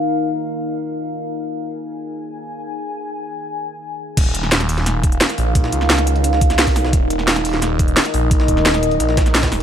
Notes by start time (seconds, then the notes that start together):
Already playing: D#4 A#4 F5
1.41 G#5
4.17 D#1 D#4 A#4 F5, kick, closed hi-hat, crash
4.35 closed hi-hat
4.43 snare
4.52 snare, closed hi-hat
4.60 snare, closed hi-hat
4.69 D#1, closed hi-hat, open hi-hat
4.78 snare, closed hi-hat
4.86 snare, closed hi-hat
5.03 kick, closed hi-hat
5.12 closed hi-hat
5.21 snare, closed hi-hat
5.29 snare, closed hi-hat
5.38 A#1, closed hi-hat, open hi-hat
5.55 kick, closed hi-hat
5.64 snare
5.72 C#2, closed hi-hat
5.81 snare
5.90 snare, closed hi-hat
5.98 snare, closed hi-hat
6.07 closed hi-hat
6.16 closed hi-hat
6.24 closed hi-hat
6.33 snare
6.41 kick, closed hi-hat
6.50 snare, closed hi-hat
6.57 C2, snare, closed hi-hat
6.67 kick, closed hi-hat
6.76 snare, closed hi-hat, open hi-hat
6.81 B1
6.85 snare
6.93 D#1 D#5, kick, closed hi-hat
7.10 closed hi-hat
7.19 snare
7.28 snare, closed hi-hat
7.36 snare, closed hi-hat
7.45 D#1, closed hi-hat, open hi-hat
7.54 snare, closed hi-hat
7.62 snare, closed hi-hat
7.79 kick, closed hi-hat
7.88 closed hi-hat
7.97 snare, closed hi-hat
8.05 snare, closed hi-hat
8.14 A#1, closed hi-hat, open hi-hat
8.31 kick, closed hi-hat
8.40 snare
8.48 D#1, kick, closed hi-hat
8.57 snare
8.66 snare, closed hi-hat
8.74 snare, closed hi-hat
8.83 closed hi-hat
8.91 closed hi-hat
9.00 A#1, closed hi-hat
9.09 snare
9.17 kick, snare, closed hi-hat
9.26 snare, closed hi-hat
9.34 snare, closed hi-hat
9.43 kick, snare, closed hi-hat
9.52 D#1, snare, open hi-hat